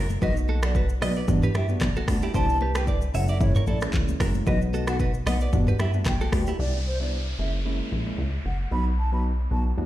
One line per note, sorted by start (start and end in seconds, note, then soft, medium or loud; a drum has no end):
0.00 0.17 F#1 medium
0.10 high conga medium
0.10 shaker medium
0.22 0.98 B1 loud
0.22 0.59 F#3 medium
0.22 0.60 B3 medium
0.22 0.60 D#4 medium
0.22 0.60 F#4 loud
0.22 0.33 F#4 medium
0.22 0.33 B4 medium
0.22 0.35 D#5 loud
0.22 kick loud
0.22 low conga medium
0.22 shaker medium
0.37 shaker medium
0.48 0.60 F#4 medium
0.48 0.59 A4 medium
0.48 high conga medium
0.63 0.82 F#3 medium
0.63 0.82 B3 medium
0.63 0.82 D#4 medium
0.63 0.82 F#4 medium
0.63 0.72 F#4 medium
0.63 0.72 A4 medium
0.63 0.74 D5 medium
0.63 finger snap loud
0.63 cross-stick loud
0.63 shaker medium
0.75 0.86 F#4 medium
0.75 0.86 B4 medium
0.75 kick medium
0.75 shaker medium
0.89 shaker medium
1.01 1.23 B1 loud
1.01 1.22 F#3 medium
1.01 1.22 B3 medium
1.01 1.22 D#4 medium
1.01 1.22 F#4 medium
1.01 1.13 B4 medium
1.01 1.15 D5 medium
1.01 1.12 D#5 medium
1.01 finger snap medium
1.01 cross-stick medium
1.01 open hi-hat loud
1.01 high conga medium
1.01 shaker medium
1.16 1.26 B4 medium
1.16 1.25 D5 medium
1.16 shaker medium
1.28 1.49 E2 loud
1.28 1.48 G3 loud
1.28 1.48 B3 medium
1.28 1.48 D4 medium
1.28 1.48 F#4 loud
1.28 kick loud
1.28 mid tom medium
1.28 low conga medium
1.28 shaker medium
1.42 1.52 G4 medium
1.42 1.52 B4 medium
1.42 mid tom medium
1.42 shaker medium
1.54 1.76 G2 medium
1.54 1.66 E4 medium
1.54 1.65 G4 medium
1.54 1.68 E5 medium
1.54 finger snap medium
1.54 cross-stick loud
1.54 high conga medium
1.54 shaker medium
1.69 1.88 G3 medium
1.69 1.88 B3 medium
1.69 1.88 D4 medium
1.69 1.88 F#4 medium
1.69 shaker medium
1.80 2.02 B1 medium
1.80 finger snap medium
1.80 kick medium
1.80 cross-stick medium
1.80 clap loud
1.80 low conga medium
1.80 shaker medium
1.96 2.05 F#4 medium
1.96 2.05 A4 medium
1.96 high conga medium
1.96 shaker medium
2.07 2.29 D2 loud
2.07 2.28 G3 medium
2.07 2.28 B3 medium
2.07 2.28 D4 medium
2.07 2.28 F#4 medium
2.07 finger snap medium
2.07 kick loud
2.07 cross-stick loud
2.07 open hi-hat medium
2.07 shaker medium
2.22 2.32 E4 medium
2.22 2.31 G4 medium
2.22 high conga medium
2.22 shaker medium
2.34 3.10 C2 loud
2.34 2.72 G3 loud
2.34 2.72 B3 medium
2.34 2.72 D4 medium
2.34 2.72 E4 loud
2.34 2.46 G4 medium
2.34 2.45 C5 medium
2.34 2.58 A5 loud
2.34 kick loud
2.34 low conga medium
2.34 shaker medium
2.49 shaker medium
2.61 2.72 G4 medium
2.61 2.72 B4 medium
2.61 high conga medium
2.75 2.94 G3 medium
2.75 2.94 B3 medium
2.75 2.94 D4 medium
2.75 2.94 E4 medium
2.75 2.85 G4 medium
2.75 2.84 B4 medium
2.75 2.86 G5 medium
2.75 finger snap medium
2.75 cross-stick loud
2.75 shaker medium
2.87 2.99 B4 medium
2.87 2.98 D5 medium
2.87 kick medium
2.87 shaker medium
3.02 shaker medium
3.14 3.57 F#1 loud
3.14 3.34 G#3 medium
3.14 3.34 A#3 medium
3.14 3.34 C#4 medium
3.14 3.34 E4 medium
3.14 3.25 C#5 medium
3.14 3.25 E5 medium
3.14 3.27 F#5 medium
3.14 open hi-hat medium
3.14 high conga medium
3.14 shaker medium
3.28 3.38 A#4 medium
3.28 3.37 D5 medium
3.28 3.40 E5 medium
3.28 shaker medium
3.40 3.61 G#3 medium
3.40 3.61 A#3 medium
3.40 3.61 C#4 medium
3.40 3.61 E4 loud
3.40 3.54 C#5 medium
3.40 kick loud
3.40 mid tom medium
3.40 low conga medium
3.40 shaker medium
3.55 3.65 A#4 medium
3.55 3.64 C#5 medium
3.55 mid tom medium
3.55 shaker medium
3.67 3.88 A#1 loud
3.67 3.78 E4 medium
3.67 3.78 A4 medium
3.67 3.80 D5 medium
3.67 high conga medium
3.67 shaker medium
3.81 4.17 G#3 medium
3.81 4.17 A#3 medium
3.81 4.17 C#4 medium
3.81 4.17 E4 medium
3.81 finger snap medium
3.81 cross-stick loud
3.81 shaker medium
3.93 4.15 C#2 loud
3.93 kick medium
3.93 clap medium
3.93 low conga medium
3.93 shaker medium
4.08 high conga medium
4.08 shaker medium
4.20 4.41 F#1 medium
4.20 4.45 G#3 medium
4.20 4.45 A#3 medium
4.20 4.45 C#4 medium
4.20 4.45 E4 medium
4.20 4.31 F#4 medium
4.20 4.31 A#4 medium
4.20 finger snap medium
4.20 kick loud
4.20 cross-stick loud
4.20 open hi-hat medium
4.20 shaker medium
4.34 high conga medium
4.34 shaker medium
4.46 5.22 B1 loud
4.46 4.84 F#3 medium
4.46 4.84 B3 medium
4.46 4.84 D#4 medium
4.46 4.85 F#4 loud
4.46 4.58 F#4 medium
4.46 4.57 B4 medium
4.46 4.60 D#5 loud
4.46 kick loud
4.46 low conga medium
4.46 shaker medium
4.62 shaker medium
4.73 4.84 F#4 medium
4.73 4.84 A4 medium
4.73 high conga medium
4.73 shaker medium
4.87 5.07 F#3 medium
4.87 5.07 B3 medium
4.87 5.07 D#4 medium
4.87 5.07 F#4 medium
4.87 4.97 F#4 medium
4.87 4.97 A4 medium
4.87 4.99 F#5 medium
4.87 finger snap medium
4.87 cross-stick loud
4.87 shaker medium
4.99 5.11 F#4 medium
4.99 5.11 B4 medium
4.99 kick medium
4.99 shaker medium
5.14 shaker medium
5.26 5.48 B1 loud
5.26 5.46 F#3 medium
5.26 5.47 B3 medium
5.26 5.47 D#4 medium
5.26 5.47 F#4 medium
5.26 5.38 B4 medium
5.26 5.37 D#5 medium
5.26 5.39 F#5 medium
5.26 finger snap medium
5.26 cross-stick loud
5.26 open hi-hat medium
5.26 high conga medium
5.26 shaker medium
5.40 5.50 B4 medium
5.40 5.50 D5 medium
5.40 shaker medium
5.53 5.74 E2 loud
5.53 5.73 G3 loud
5.53 5.73 B3 medium
5.53 5.73 D4 medium
5.53 5.73 F#4 loud
5.53 kick loud
5.53 mid tom medium
5.53 low conga medium
5.53 shaker medium
5.67 5.77 G4 medium
5.67 5.76 B4 medium
5.67 mid tom medium
5.67 shaker medium
5.79 6.01 G2 medium
5.79 5.91 E4 medium
5.79 5.90 G4 medium
5.79 5.92 E5 medium
5.79 finger snap medium
5.79 cross-stick loud
5.79 high conga medium
5.79 shaker medium
5.93 6.13 G3 medium
5.93 6.13 B3 medium
5.93 6.13 D4 medium
5.93 6.13 F#4 medium
5.93 shaker soft
6.05 6.27 B1 loud
6.05 6.45 G5 medium
6.05 finger snap medium
6.05 kick medium
6.05 cross-stick medium
6.05 clap medium
6.05 low conga medium
6.05 shaker medium
6.21 6.30 F#4 medium
6.21 6.29 A4 medium
6.21 high conga medium
6.21 shaker medium
6.32 6.54 D2 medium
6.32 6.53 G3 medium
6.32 6.53 B3 medium
6.32 6.53 D4 medium
6.32 6.53 F#4 medium
6.32 finger snap medium
6.32 kick loud
6.32 cross-stick loud
6.32 open hi-hat medium
6.32 shaker medium
6.47 6.57 E4 medium
6.47 6.56 G4 medium
6.47 high conga medium
6.47 shaker medium
6.59 7.35 C2 loud
6.59 6.79 G3 medium
6.59 6.79 B3 medium
6.59 6.79 D4 medium
6.59 6.80 E4 loud
6.59 6.72 D5 loud
6.59 downlifter medium
6.87 6.99 C5 medium
7.00 7.19 G3 medium
7.00 7.19 B3 medium
7.00 7.19 D4 medium
7.00 7.19 E4 medium
7.00 7.11 D5 medium
7.39 7.81 F#1 loud
7.39 7.59 G#3 medium
7.39 7.59 A#3 medium
7.39 7.59 C#4 medium
7.39 7.59 E4 medium
7.39 7.52 E5 medium
7.65 8.03 G#3 medium
7.65 8.03 A#3 medium
7.65 8.03 C#4 medium
7.65 8.03 E4 loud
7.92 8.13 A#1 medium
8.06 8.25 G#3 medium
8.06 8.25 A#3 medium
8.06 8.25 C#4 medium
8.06 8.25 E4 medium
8.18 8.40 C#2 loud
8.45 8.66 F#1 medium
8.45 8.58 F#5 medium
8.71 9.47 B1 loud
8.71 8.91 F#3 medium
8.71 8.92 B3 medium
8.71 8.92 D#4 medium
8.71 8.92 F#4 loud
8.71 8.84 B5 medium
8.99 9.11 A5 medium
9.12 9.31 F#3 medium
9.12 9.31 B3 medium
9.12 9.31 D#4 medium
9.12 9.31 F#4 medium
9.12 9.23 B5 medium
9.51 9.72 B1 medium
9.51 9.71 F#3 medium
9.51 9.71 B3 medium
9.51 9.71 D#4 medium
9.51 9.71 F#4 medium
9.51 9.64 A5 medium
9.77 9.86 E2 loud
9.77 9.86 G3 medium
9.77 9.86 B3 medium
9.77 9.86 D4 medium
9.77 9.86 F#4 loud